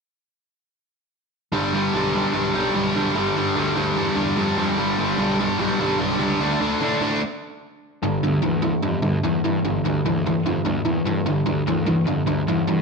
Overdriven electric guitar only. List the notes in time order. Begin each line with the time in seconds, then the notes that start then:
1.52 G2 D3 G3
1.74 G2 D3 G3
1.94 G2 D3 G3
2.14 G2 D3 G3
2.33 G2 D3 G3
2.54 G2 D3 G3
2.75 G2 D3 G3
2.95 G2 D3 G3
3.15 G2 D3 G3
3.36 G2 D3 G3
3.56 G2 D3 G3
3.76 G2 D3 G3
3.96 G2 D3 G3
4.16 G2 D3 G3
4.36 G2 D3 G3
4.57 G2 D3 G3
4.77 G2 D3 G3
4.98 G2 D3 G3
5.18 G2 D3 G3
5.39 G2 D3 G3
5.59 G2 D3 G3
5.80 G2 D3 G3
5.99 G2 D3 G3
6.19 G2 D3 G3
6.40 D3 A3 D4
6.61 D3 A3 D4
6.81 D3 A3 D4
7.01 D3 A3 D4
8.03 G2 D3
8.23 G2 D3
8.42 G2 E3
8.62 G2 E3
8.83 G2 D3
9.02 G2 D3
9.23 G2 E3
9.44 G2 E3
9.65 G2 D3
9.85 G2 D3
10.06 G2 E3
10.26 G2 E3
10.46 G2 D3
10.65 G2 D3
10.85 G2 E3
11.05 G2 E3
11.26 G2 D3
11.46 G2 D3
11.67 G2 E3
11.86 G2 E3
12.07 G2 D3
12.27 G2 D3
12.48 G2 E3
12.67 G2 E3